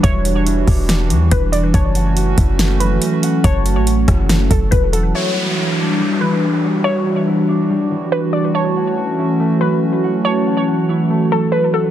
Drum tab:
HH |xxxoxxxx|xxxxxxxx|xxxxxxxx|--------|
SD |----o---|----o---|---ro---|--------|
BD |o--o--o-|o--o----|o--o-oo-|--------|

HH |--------|--------|--------|
SD |--------|--------|--------|
BD |--------|--------|--------|